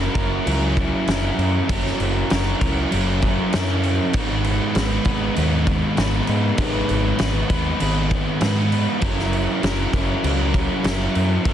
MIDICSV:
0, 0, Header, 1, 4, 480
1, 0, Start_track
1, 0, Tempo, 610376
1, 1335, Time_signature, 4, 2, 24, 8
1, 9070, End_track
2, 0, Start_track
2, 0, Title_t, "Overdriven electric guitar"
2, 0, Program_c, 0, 29
2, 0, Note_on_c, 0, 54, 83
2, 0, Note_on_c, 0, 61, 71
2, 0, Note_on_c, 0, 64, 80
2, 0, Note_on_c, 0, 70, 84
2, 109, Note_off_c, 0, 70, 0
2, 112, Note_on_c, 0, 70, 83
2, 123, Note_off_c, 0, 64, 0
2, 126, Note_on_c, 0, 64, 64
2, 131, Note_off_c, 0, 61, 0
2, 135, Note_on_c, 0, 61, 60
2, 353, Note_off_c, 0, 54, 0
2, 355, Note_off_c, 0, 61, 0
2, 356, Note_on_c, 0, 54, 83
2, 360, Note_off_c, 0, 64, 0
2, 364, Note_on_c, 0, 61, 84
2, 369, Note_on_c, 0, 64, 97
2, 370, Note_off_c, 0, 70, 0
2, 379, Note_on_c, 0, 70, 103
2, 843, Note_off_c, 0, 54, 0
2, 846, Note_on_c, 0, 54, 72
2, 849, Note_off_c, 0, 61, 0
2, 855, Note_off_c, 0, 64, 0
2, 858, Note_on_c, 0, 61, 80
2, 861, Note_off_c, 0, 70, 0
2, 864, Note_on_c, 0, 64, 82
2, 870, Note_on_c, 0, 70, 81
2, 1319, Note_off_c, 0, 54, 0
2, 1322, Note_off_c, 0, 61, 0
2, 1322, Note_on_c, 0, 54, 100
2, 1331, Note_off_c, 0, 64, 0
2, 1331, Note_on_c, 0, 61, 96
2, 1338, Note_off_c, 0, 70, 0
2, 1340, Note_on_c, 0, 64, 99
2, 1347, Note_on_c, 0, 70, 104
2, 1801, Note_off_c, 0, 54, 0
2, 1804, Note_on_c, 0, 54, 69
2, 1807, Note_off_c, 0, 61, 0
2, 1810, Note_off_c, 0, 64, 0
2, 1816, Note_on_c, 0, 61, 72
2, 1820, Note_on_c, 0, 64, 79
2, 1823, Note_off_c, 0, 70, 0
2, 1833, Note_on_c, 0, 70, 81
2, 2033, Note_off_c, 0, 70, 0
2, 2043, Note_on_c, 0, 70, 74
2, 2049, Note_off_c, 0, 64, 0
2, 2058, Note_on_c, 0, 64, 64
2, 2061, Note_off_c, 0, 61, 0
2, 2071, Note_on_c, 0, 61, 56
2, 2282, Note_off_c, 0, 54, 0
2, 2285, Note_on_c, 0, 54, 96
2, 2286, Note_off_c, 0, 61, 0
2, 2294, Note_off_c, 0, 64, 0
2, 2295, Note_on_c, 0, 61, 93
2, 2303, Note_off_c, 0, 70, 0
2, 2304, Note_on_c, 0, 64, 91
2, 2312, Note_on_c, 0, 70, 101
2, 2771, Note_off_c, 0, 54, 0
2, 2773, Note_off_c, 0, 61, 0
2, 2774, Note_on_c, 0, 54, 78
2, 2782, Note_on_c, 0, 61, 77
2, 2784, Note_off_c, 0, 64, 0
2, 2790, Note_off_c, 0, 70, 0
2, 2793, Note_on_c, 0, 64, 77
2, 2800, Note_on_c, 0, 70, 85
2, 3249, Note_off_c, 0, 61, 0
2, 3251, Note_on_c, 0, 44, 99
2, 3254, Note_on_c, 0, 51, 89
2, 3255, Note_off_c, 0, 64, 0
2, 3258, Note_off_c, 0, 54, 0
2, 3258, Note_off_c, 0, 70, 0
2, 3262, Note_on_c, 0, 56, 95
2, 3268, Note_on_c, 0, 59, 99
2, 3269, Note_on_c, 0, 63, 97
2, 3274, Note_on_c, 0, 71, 107
2, 3734, Note_off_c, 0, 56, 0
2, 3737, Note_on_c, 0, 56, 77
2, 3740, Note_off_c, 0, 59, 0
2, 3743, Note_on_c, 0, 59, 71
2, 3752, Note_off_c, 0, 63, 0
2, 3755, Note_on_c, 0, 63, 71
2, 3757, Note_off_c, 0, 71, 0
2, 3760, Note_on_c, 0, 71, 74
2, 3969, Note_off_c, 0, 71, 0
2, 3972, Note_on_c, 0, 71, 72
2, 3980, Note_off_c, 0, 51, 0
2, 3981, Note_off_c, 0, 63, 0
2, 3984, Note_on_c, 0, 63, 64
2, 3992, Note_off_c, 0, 59, 0
2, 3995, Note_on_c, 0, 59, 62
2, 3996, Note_off_c, 0, 56, 0
2, 3999, Note_on_c, 0, 56, 57
2, 4204, Note_off_c, 0, 44, 0
2, 4207, Note_on_c, 0, 44, 86
2, 4209, Note_off_c, 0, 56, 0
2, 4213, Note_off_c, 0, 59, 0
2, 4213, Note_on_c, 0, 51, 86
2, 4219, Note_on_c, 0, 56, 93
2, 4221, Note_off_c, 0, 63, 0
2, 4222, Note_off_c, 0, 71, 0
2, 4223, Note_on_c, 0, 59, 98
2, 4231, Note_on_c, 0, 63, 94
2, 4231, Note_on_c, 0, 71, 93
2, 4679, Note_off_c, 0, 56, 0
2, 4688, Note_off_c, 0, 59, 0
2, 4688, Note_on_c, 0, 56, 78
2, 4697, Note_off_c, 0, 63, 0
2, 4697, Note_on_c, 0, 59, 77
2, 4706, Note_on_c, 0, 63, 83
2, 4707, Note_off_c, 0, 71, 0
2, 4717, Note_on_c, 0, 71, 81
2, 4935, Note_off_c, 0, 44, 0
2, 4938, Note_off_c, 0, 51, 0
2, 5170, Note_on_c, 0, 44, 94
2, 5174, Note_off_c, 0, 56, 0
2, 5174, Note_on_c, 0, 51, 96
2, 5177, Note_off_c, 0, 59, 0
2, 5181, Note_off_c, 0, 63, 0
2, 5183, Note_on_c, 0, 56, 94
2, 5186, Note_off_c, 0, 71, 0
2, 5186, Note_on_c, 0, 59, 98
2, 5190, Note_on_c, 0, 63, 99
2, 5196, Note_on_c, 0, 71, 104
2, 5635, Note_off_c, 0, 56, 0
2, 5644, Note_off_c, 0, 59, 0
2, 5645, Note_on_c, 0, 56, 69
2, 5654, Note_on_c, 0, 59, 77
2, 5657, Note_off_c, 0, 63, 0
2, 5663, Note_off_c, 0, 71, 0
2, 5667, Note_on_c, 0, 63, 74
2, 5672, Note_on_c, 0, 71, 86
2, 5875, Note_off_c, 0, 71, 0
2, 5884, Note_on_c, 0, 71, 81
2, 5887, Note_off_c, 0, 63, 0
2, 5893, Note_off_c, 0, 59, 0
2, 5895, Note_off_c, 0, 44, 0
2, 5896, Note_on_c, 0, 63, 68
2, 5897, Note_off_c, 0, 51, 0
2, 5902, Note_off_c, 0, 56, 0
2, 5903, Note_on_c, 0, 59, 68
2, 5911, Note_on_c, 0, 56, 61
2, 6121, Note_on_c, 0, 44, 87
2, 6124, Note_off_c, 0, 56, 0
2, 6127, Note_on_c, 0, 51, 92
2, 6128, Note_off_c, 0, 59, 0
2, 6132, Note_off_c, 0, 63, 0
2, 6134, Note_on_c, 0, 56, 84
2, 6137, Note_on_c, 0, 59, 96
2, 6138, Note_off_c, 0, 71, 0
2, 6142, Note_on_c, 0, 63, 93
2, 6147, Note_on_c, 0, 71, 110
2, 6598, Note_off_c, 0, 56, 0
2, 6607, Note_off_c, 0, 59, 0
2, 6608, Note_on_c, 0, 56, 75
2, 6613, Note_off_c, 0, 63, 0
2, 6616, Note_on_c, 0, 59, 86
2, 6621, Note_off_c, 0, 71, 0
2, 6622, Note_on_c, 0, 63, 77
2, 6631, Note_on_c, 0, 71, 89
2, 6848, Note_off_c, 0, 44, 0
2, 6851, Note_off_c, 0, 51, 0
2, 7077, Note_off_c, 0, 56, 0
2, 7080, Note_on_c, 0, 54, 98
2, 7081, Note_off_c, 0, 59, 0
2, 7084, Note_off_c, 0, 63, 0
2, 7088, Note_off_c, 0, 71, 0
2, 7090, Note_on_c, 0, 61, 104
2, 7100, Note_on_c, 0, 64, 107
2, 7109, Note_on_c, 0, 70, 97
2, 7561, Note_off_c, 0, 54, 0
2, 7564, Note_on_c, 0, 54, 71
2, 7572, Note_off_c, 0, 61, 0
2, 7576, Note_on_c, 0, 61, 73
2, 7583, Note_off_c, 0, 64, 0
2, 7586, Note_on_c, 0, 64, 79
2, 7589, Note_off_c, 0, 70, 0
2, 7592, Note_on_c, 0, 70, 85
2, 7809, Note_off_c, 0, 70, 0
2, 7812, Note_on_c, 0, 70, 71
2, 7822, Note_off_c, 0, 64, 0
2, 7826, Note_on_c, 0, 64, 70
2, 7837, Note_off_c, 0, 61, 0
2, 7841, Note_on_c, 0, 61, 65
2, 8041, Note_off_c, 0, 54, 0
2, 8044, Note_off_c, 0, 61, 0
2, 8044, Note_on_c, 0, 54, 90
2, 8052, Note_off_c, 0, 64, 0
2, 8053, Note_on_c, 0, 61, 88
2, 8061, Note_off_c, 0, 70, 0
2, 8061, Note_on_c, 0, 64, 101
2, 8071, Note_on_c, 0, 70, 94
2, 8512, Note_off_c, 0, 54, 0
2, 8515, Note_on_c, 0, 54, 74
2, 8517, Note_off_c, 0, 61, 0
2, 8526, Note_on_c, 0, 61, 84
2, 8527, Note_off_c, 0, 64, 0
2, 8534, Note_off_c, 0, 70, 0
2, 8537, Note_on_c, 0, 64, 83
2, 8543, Note_on_c, 0, 70, 82
2, 8988, Note_off_c, 0, 54, 0
2, 8998, Note_on_c, 0, 54, 89
2, 9001, Note_off_c, 0, 61, 0
2, 9007, Note_off_c, 0, 64, 0
2, 9010, Note_on_c, 0, 61, 102
2, 9016, Note_off_c, 0, 70, 0
2, 9017, Note_on_c, 0, 64, 101
2, 9026, Note_on_c, 0, 70, 105
2, 9070, Note_off_c, 0, 54, 0
2, 9070, Note_off_c, 0, 61, 0
2, 9070, Note_off_c, 0, 64, 0
2, 9070, Note_off_c, 0, 70, 0
2, 9070, End_track
3, 0, Start_track
3, 0, Title_t, "Picked electric bass"
3, 0, Program_c, 1, 34
3, 120, Note_on_c, 1, 30, 93
3, 297, Note_off_c, 1, 30, 0
3, 365, Note_on_c, 1, 37, 94
3, 715, Note_off_c, 1, 37, 0
3, 845, Note_on_c, 1, 30, 92
3, 1022, Note_off_c, 1, 30, 0
3, 1088, Note_on_c, 1, 42, 83
3, 1264, Note_off_c, 1, 42, 0
3, 1329, Note_on_c, 1, 30, 95
3, 1505, Note_off_c, 1, 30, 0
3, 1572, Note_on_c, 1, 30, 94
3, 1747, Note_off_c, 1, 30, 0
3, 1818, Note_on_c, 1, 30, 87
3, 1992, Note_off_c, 1, 30, 0
3, 2056, Note_on_c, 1, 37, 82
3, 2231, Note_off_c, 1, 37, 0
3, 2303, Note_on_c, 1, 30, 89
3, 2649, Note_off_c, 1, 30, 0
3, 2788, Note_on_c, 1, 42, 80
3, 3133, Note_off_c, 1, 42, 0
3, 3255, Note_on_c, 1, 32, 96
3, 3605, Note_off_c, 1, 32, 0
3, 3738, Note_on_c, 1, 32, 84
3, 3914, Note_off_c, 1, 32, 0
3, 3977, Note_on_c, 1, 32, 81
3, 4153, Note_off_c, 1, 32, 0
3, 4227, Note_on_c, 1, 39, 92
3, 4572, Note_off_c, 1, 39, 0
3, 4702, Note_on_c, 1, 32, 94
3, 4876, Note_off_c, 1, 32, 0
3, 4942, Note_on_c, 1, 44, 85
3, 5116, Note_off_c, 1, 44, 0
3, 5178, Note_on_c, 1, 32, 100
3, 5352, Note_off_c, 1, 32, 0
3, 5422, Note_on_c, 1, 32, 90
3, 5595, Note_off_c, 1, 32, 0
3, 5662, Note_on_c, 1, 32, 84
3, 5835, Note_off_c, 1, 32, 0
3, 5895, Note_on_c, 1, 39, 82
3, 6070, Note_off_c, 1, 39, 0
3, 6143, Note_on_c, 1, 32, 92
3, 6487, Note_off_c, 1, 32, 0
3, 6614, Note_on_c, 1, 44, 88
3, 6960, Note_off_c, 1, 44, 0
3, 7094, Note_on_c, 1, 30, 99
3, 7439, Note_off_c, 1, 30, 0
3, 7575, Note_on_c, 1, 30, 93
3, 7747, Note_off_c, 1, 30, 0
3, 7810, Note_on_c, 1, 30, 81
3, 7983, Note_off_c, 1, 30, 0
3, 8053, Note_on_c, 1, 37, 97
3, 8396, Note_off_c, 1, 37, 0
3, 8529, Note_on_c, 1, 30, 95
3, 8701, Note_off_c, 1, 30, 0
3, 8774, Note_on_c, 1, 42, 93
3, 8943, Note_off_c, 1, 42, 0
3, 9008, Note_on_c, 1, 30, 93
3, 9070, Note_off_c, 1, 30, 0
3, 9070, End_track
4, 0, Start_track
4, 0, Title_t, "Drums"
4, 118, Note_on_c, 9, 49, 60
4, 120, Note_on_c, 9, 36, 92
4, 197, Note_off_c, 9, 49, 0
4, 199, Note_off_c, 9, 36, 0
4, 368, Note_on_c, 9, 49, 79
4, 447, Note_off_c, 9, 49, 0
4, 605, Note_on_c, 9, 36, 82
4, 606, Note_on_c, 9, 49, 55
4, 684, Note_off_c, 9, 36, 0
4, 685, Note_off_c, 9, 49, 0
4, 845, Note_on_c, 9, 49, 79
4, 854, Note_on_c, 9, 38, 107
4, 924, Note_off_c, 9, 49, 0
4, 933, Note_off_c, 9, 38, 0
4, 1092, Note_on_c, 9, 49, 58
4, 1170, Note_off_c, 9, 49, 0
4, 1332, Note_on_c, 9, 36, 119
4, 1332, Note_on_c, 9, 49, 89
4, 1411, Note_off_c, 9, 36, 0
4, 1411, Note_off_c, 9, 49, 0
4, 1465, Note_on_c, 9, 38, 30
4, 1544, Note_off_c, 9, 38, 0
4, 1571, Note_on_c, 9, 49, 68
4, 1650, Note_off_c, 9, 49, 0
4, 1810, Note_on_c, 9, 49, 86
4, 1819, Note_on_c, 9, 38, 111
4, 1888, Note_off_c, 9, 49, 0
4, 1898, Note_off_c, 9, 38, 0
4, 2055, Note_on_c, 9, 36, 86
4, 2056, Note_on_c, 9, 49, 68
4, 2134, Note_off_c, 9, 36, 0
4, 2135, Note_off_c, 9, 49, 0
4, 2295, Note_on_c, 9, 49, 85
4, 2374, Note_off_c, 9, 49, 0
4, 2533, Note_on_c, 9, 49, 64
4, 2537, Note_on_c, 9, 36, 78
4, 2612, Note_off_c, 9, 49, 0
4, 2616, Note_off_c, 9, 36, 0
4, 2772, Note_on_c, 9, 49, 78
4, 2782, Note_on_c, 9, 38, 111
4, 2851, Note_off_c, 9, 49, 0
4, 2860, Note_off_c, 9, 38, 0
4, 3015, Note_on_c, 9, 49, 66
4, 3094, Note_off_c, 9, 49, 0
4, 3250, Note_on_c, 9, 49, 88
4, 3257, Note_on_c, 9, 36, 110
4, 3329, Note_off_c, 9, 49, 0
4, 3336, Note_off_c, 9, 36, 0
4, 3494, Note_on_c, 9, 49, 66
4, 3573, Note_off_c, 9, 49, 0
4, 3734, Note_on_c, 9, 49, 89
4, 3744, Note_on_c, 9, 38, 114
4, 3813, Note_off_c, 9, 49, 0
4, 3822, Note_off_c, 9, 38, 0
4, 3968, Note_on_c, 9, 49, 66
4, 3976, Note_on_c, 9, 36, 86
4, 4047, Note_off_c, 9, 49, 0
4, 4055, Note_off_c, 9, 36, 0
4, 4218, Note_on_c, 9, 49, 80
4, 4296, Note_off_c, 9, 49, 0
4, 4458, Note_on_c, 9, 36, 83
4, 4458, Note_on_c, 9, 49, 54
4, 4537, Note_off_c, 9, 36, 0
4, 4537, Note_off_c, 9, 49, 0
4, 4695, Note_on_c, 9, 49, 76
4, 4704, Note_on_c, 9, 38, 114
4, 4774, Note_off_c, 9, 49, 0
4, 4783, Note_off_c, 9, 38, 0
4, 4932, Note_on_c, 9, 49, 57
4, 5011, Note_off_c, 9, 49, 0
4, 5172, Note_on_c, 9, 49, 83
4, 5177, Note_on_c, 9, 36, 116
4, 5250, Note_off_c, 9, 49, 0
4, 5256, Note_off_c, 9, 36, 0
4, 5416, Note_on_c, 9, 49, 59
4, 5495, Note_off_c, 9, 49, 0
4, 5651, Note_on_c, 9, 49, 89
4, 5660, Note_on_c, 9, 38, 115
4, 5729, Note_off_c, 9, 49, 0
4, 5739, Note_off_c, 9, 38, 0
4, 5897, Note_on_c, 9, 36, 96
4, 5898, Note_on_c, 9, 49, 68
4, 5976, Note_off_c, 9, 36, 0
4, 5976, Note_off_c, 9, 49, 0
4, 6135, Note_on_c, 9, 49, 84
4, 6214, Note_off_c, 9, 49, 0
4, 6375, Note_on_c, 9, 49, 60
4, 6378, Note_on_c, 9, 36, 81
4, 6454, Note_off_c, 9, 49, 0
4, 6457, Note_off_c, 9, 36, 0
4, 6611, Note_on_c, 9, 49, 88
4, 6621, Note_on_c, 9, 38, 112
4, 6690, Note_off_c, 9, 49, 0
4, 6699, Note_off_c, 9, 38, 0
4, 6857, Note_on_c, 9, 49, 66
4, 6936, Note_off_c, 9, 49, 0
4, 7089, Note_on_c, 9, 49, 90
4, 7095, Note_on_c, 9, 36, 109
4, 7168, Note_off_c, 9, 49, 0
4, 7174, Note_off_c, 9, 36, 0
4, 7229, Note_on_c, 9, 38, 33
4, 7307, Note_off_c, 9, 38, 0
4, 7335, Note_on_c, 9, 49, 68
4, 7413, Note_off_c, 9, 49, 0
4, 7573, Note_on_c, 9, 49, 86
4, 7583, Note_on_c, 9, 38, 122
4, 7652, Note_off_c, 9, 49, 0
4, 7661, Note_off_c, 9, 38, 0
4, 7812, Note_on_c, 9, 36, 89
4, 7812, Note_on_c, 9, 49, 64
4, 7891, Note_off_c, 9, 36, 0
4, 7891, Note_off_c, 9, 49, 0
4, 8053, Note_on_c, 9, 49, 85
4, 8132, Note_off_c, 9, 49, 0
4, 8288, Note_on_c, 9, 49, 59
4, 8290, Note_on_c, 9, 36, 84
4, 8366, Note_off_c, 9, 49, 0
4, 8369, Note_off_c, 9, 36, 0
4, 8526, Note_on_c, 9, 49, 81
4, 8536, Note_on_c, 9, 38, 116
4, 8605, Note_off_c, 9, 49, 0
4, 8614, Note_off_c, 9, 38, 0
4, 8770, Note_on_c, 9, 49, 64
4, 8848, Note_off_c, 9, 49, 0
4, 9008, Note_on_c, 9, 36, 114
4, 9009, Note_on_c, 9, 49, 78
4, 9070, Note_off_c, 9, 36, 0
4, 9070, Note_off_c, 9, 49, 0
4, 9070, End_track
0, 0, End_of_file